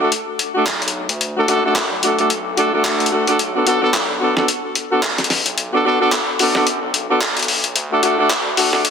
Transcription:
Already playing: analog synth bass D2
0.00 horn section A3 D4 F#4 A4
0.12 closed hi-hat
0.39 closed hi-hat
0.55 horn section A3 D4 F#4 A4
0.66 analog synth bass B1, clap, closed hi-hat
0.82 closed hi-hat
0.88 closed hi-hat
1.09 analog synth bass D2, closed hi-hat
1.21 closed hi-hat
1.37 horn section A3 D4 F#4 A4
1.48 analog synth bass F#2, horn section A3 D4 F#4 A4, closed hi-hat
1.64 horn section A3 D4 F#4 A4
1.76 clap, closed hi-hat
1.91 analog synth bass B1
2.03 horn section A3 D4 F#4 A4, closed hi-hat
2.19 horn section A3 D4 F#4 A4, closed hi-hat
2.30 closed hi-hat
2.57 horn section A3 D4 F#4 A4, closed hi-hat
2.73 analog synth bass D2, horn section A3 D4 F#4 A4
2.85 clap, closed hi-hat
3.00 analog synth bass D2, closed hi-hat
3.06 closed hi-hat
3.12 horn section A3 D4 F#4 A4
3.27 analog synth bass D2, horn section A3 D4 F#4 A4, closed hi-hat
3.39 analog synth bass B1, closed hi-hat
3.55 horn section B3 D4 F#4 A4
3.66 horn section B3 D4 F#4 A4, closed hi-hat
3.82 analog synth bass B1, horn section B3 D4 F#4 A4
3.94 clap, closed hi-hat
4.21 analog synth bass B1, horn section B3 D4 F#4 A4
4.37 horn section B3 D4 F#4 A4, snare
4.48 closed hi-hat
4.75 closed hi-hat
4.91 horn section B3 D4 F#4 A4
5.03 analog synth bass A1, clap, closed hi-hat
5.18 snare, closed hi-hat
5.24 closed hi-hat
5.30 snare, open hi-hat
5.46 analog synth bass B1, closed hi-hat
5.58 closed hi-hat
5.73 horn section B3 D4 F#4 A4
5.85 horn section B3 D4 F#4 A4
6.01 horn section B3 D4 F#4 A4
6.12 clap, closed hi-hat
6.39 analog synth bass F#2, horn section B3 D4 F#4 A4, open hi-hat
6.55 horn section B3 D4 F#4 A4, snare
6.67 closed hi-hat
6.82 analog synth bass B1
6.94 closed hi-hat
7.10 analog synth bass B1, horn section B3 D4 F#4 A4
7.21 clap, closed hi-hat
7.37 closed hi-hat
7.39 closed hi-hat
7.43 closed hi-hat
7.44 closed hi-hat, open hi-hat
7.64 closed hi-hat
7.76 analog synth bass D2, closed hi-hat
7.92 horn section A3 D4 F#4 A4
8.03 horn section A3 D4 F#4 A4, closed hi-hat
8.19 analog synth bass D2, horn section A3 D4 F#4 A4
8.30 clap, closed hi-hat
8.57 analog synth bass D2, horn section A3 D4 F#4 A4, open hi-hat
8.73 horn section A3 D4 F#4 A4, snare
8.85 closed hi-hat

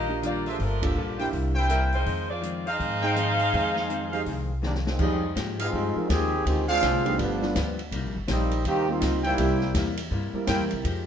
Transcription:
Already playing: upright bass A#1, hollow-body jazz guitar D#3 G3 D4 F4, saxophone section A#3 F4 G4 D#5
0.09 grand piano A#3 D4 F4 G4
0.22 hollow-body jazz guitar D#3 G3 D4 F4, cross-stick, closed hi-hat
0.27 saxophone section A#3 F4 G4 D5
0.46 saxophone section G#3 D4 F4 C5, trumpet section F4 A4 A#4 E5, open hi-hat
0.59 upright bass G1, saxophone section F3 A3 D4 A#4, hollow-body jazz guitar G3 A#3 F4 A4, kick, open hi-hat
0.82 saxophone section F3 A#3 D4 G4, grand piano A#3 D4 F4 A4, kick, ride
0.96 upright bass A#1, hollow-body jazz guitar G3 A#3 F4 A4
1.19 grand piano A#3 D4 E4 G4, trumpet section E4 A#4 C5 G5, open hi-hat
1.31 upright bass C2, hollow-body jazz guitar C3 G3 A#3 E4, kick, open hi-hat
1.55 trumpet section E4 A#4 C5 G5
1.69 hollow-body jazz guitar C3 G3 A#3 E4, saxophone section G3 C4 E4 A#4, cross-stick, closed hi-hat
1.92 saxophone section G#3 D#4 F4 C5, open hi-hat
2.05 hollow-body jazz guitar F2 D#3 G#3 C4, upright bass F2, kick, open hi-hat
2.30 saxophone section C4 F4 G#4 D5
2.41 hollow-body jazz guitar F2 D#3 G#3 C4, closed hi-hat
2.66 trumpet section D#4 G#4 C5 F5, saxophone section D#4 G#4 C5 F5, open hi-hat
2.78 hollow-body jazz guitar F2 D#3 G#3 C4, upright bass G#2, kick, open hi-hat
3.02 grand piano G#3 C4 D#4 G5, trumpet section D#4 C5 G5
3.15 hollow-body jazz guitar F2 D#3 G#3 C4, cross-stick, closed hi-hat
3.39 open hi-hat
3.51 hollow-body jazz guitar F2 D#3 G#3, upright bass F2, grand piano G#3 C4 D#4 G5, kick, open hi-hat
3.56 hollow-body jazz guitar C4
3.76 snare
3.89 hollow-body jazz guitar F2 D#3 G#3 C4, closed hi-hat
4.12 grand piano G#3 C4 D#4 G4, trumpet section D#4 G#4 C5 F5, open hi-hat
4.26 upright bass C2, hollow-body jazz guitar F2 D#3 G#3 C4, kick, open hi-hat
4.62 hollow-body jazz guitar F2 D#3 G#3 C4, trombone section D#3 G3 A#3 D4, snare
4.75 snare
4.87 trombone section D#3 F3 G#3 C4, snare
4.99 upright bass F2, grand piano F3 G#3 C4 D#4 G4, hollow-body jazz guitar F3 G#3 D#4, trombone section G3 G#3 C4 D#4, kick, crash
5.04 hollow-body jazz guitar G4
5.35 upright bass G#2, hollow-body jazz guitar F3 G#3 D#4 G4, kick, snare, hi-hat pedal, ride
5.59 trombone section G#3 C4 D#4 F4, trumpet section D#4 G4 G#4 F5, ride
5.72 upright bass G2, hollow-body jazz guitar F3 G#3 D#4 G4, kick
5.96 grand piano F3 G#3 C4 D#4 A#4, muted upright bass stroke
6.09 upright bass D#2, trombone section D#3 C4 G4 G#4, hollow-body jazz guitar F3 G#3 D#4 G4, kick, snare, hi-hat pedal, ride
6.45 upright bass D2, hollow-body jazz guitar D3 G#3 C4 F4, trombone section D#3 G#3 C4 G4, kick, ride
6.68 trombone section G#3 C4 D4 F4, trumpet section D4 G#4 C5 F5
6.82 upright bass C2, hollow-body jazz guitar D3 G#3 C4 F4, kick, snare, hi-hat pedal, ride
7.05 trombone section F3 G#3 C4 D#4, grand piano G3 A3 B3 D4 F4, ride
7.17 upright bass G1, hollow-body jazz guitar G2 F3 B3 D4, trombone section F3 G3 B3 D4, kick, ride
7.41 grand piano G3 A3 B3 D4 F4, snare
7.55 upright bass D2, hollow-body jazz guitar G2 F3 B3 D4, kick, snare, hi-hat pedal, ride
7.79 ride
7.91 upright bass C2, hollow-body jazz guitar C3 G3 A#3 D#4, kick, ride
8.04 upright bass A#1
8.16 upright bass G1
8.28 upright bass A#1, hollow-body jazz guitar C3 G3 A#3 D#4, trombone section G3 A#3 C4 D#4, kick, snare, hi-hat pedal, ride
8.51 ride
8.65 upright bass D#2, hollow-body jazz guitar C3 G3 A#3 D#4, trombone section D#3 A#3 C4 G4, kick, ride
8.88 grand piano G3 A#3 C4 D#4 G4, trombone section A#3 C4 D#4 F4
9.01 upright bass C#2, hollow-body jazz guitar C3 G3 A#3 D#4, kick, snare, hi-hat pedal, ride
9.24 trombone section G3 A#3 C4 E4, trumpet section E4 A#4 C5 G5, ride
9.38 upright bass C2, hollow-body jazz guitar C3 G3 A#3, grand piano G3 A#3 C4 E4 G4, kick, ride
9.42 hollow-body jazz guitar E4
9.61 snare
9.74 upright bass E2, hollow-body jazz guitar C3 G3 A#3 E4, kick, snare, hi-hat pedal, ride
9.97 ride
10.11 upright bass G2, hollow-body jazz guitar C3 G3 A#3 E4, kick
10.34 grand piano G3 A#3 C4 E4 A#4, muted upright bass stroke
10.47 upright bass F#2, hollow-body jazz guitar C3 G3 A#3 E4, trumpet section E4 A#4 C5 G5, kick, snare, hi-hat pedal, ride
10.59 upright bass E2
10.71 upright bass C2, ride
10.84 upright bass F2, hollow-body jazz guitar F3 G#3 D#4 G4, kick, ride

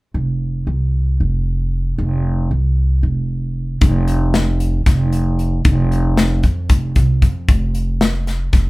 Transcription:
0.14 upright bass F1
0.67 upright bass C2
1.20 upright bass F1
1.98 upright bass F1
2.51 upright bass C2
3.03 upright bass F1
3.81 upright bass F1, kick, closed hi-hat
4.08 closed hi-hat
4.34 snare, closed hi-hat
4.60 closed hi-hat
4.86 upright bass F1, kick, snare, closed hi-hat
5.12 closed hi-hat
5.39 closed hi-hat
5.65 upright bass F1, kick, closed hi-hat
5.92 closed hi-hat
6.17 snare, closed hi-hat
6.43 upright bass F2, kick, closed hi-hat
6.69 upright bass F1, kick, closed hi-hat
6.96 upright bass C2, kick, closed hi-hat
7.22 upright bass F2, kick, closed hi-hat
7.48 upright bass F1, kick, closed hi-hat
7.75 closed hi-hat
8.01 snare, closed hi-hat
8.27 snare, closed hi-hat
8.53 upright bass F1, kick, snare, closed hi-hat

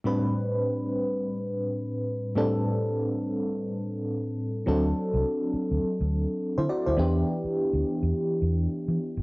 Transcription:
0.04 fm electric piano A2 G3 C4 D4 B4
2.36 fm electric piano A2 G3 C4 D4 A4
4.66 fingered electric bass D2, fm electric piano F#3 C4 D4 A4
5.14 fingered electric bass C2
5.54 muted fingered electric bass stroke
5.71 fingered electric bass D2
5.83 muted fingered electric bass stroke
6.01 fingered electric bass D2
6.58 fingered electric bass D3, fm electric piano E4 C5
6.69 fm electric piano F#4 D5
6.86 fingered electric bass D2, fm electric piano E4 C5
6.97 fingered electric bass E2, fm electric piano E3 B3 D4 G4
7.45 muted fingered electric bass stroke
7.73 fingered electric bass D2
8.03 fingered electric bass E2
8.42 fingered electric bass E2
8.88 fingered electric bass E3
9.17 fingered electric bass G1

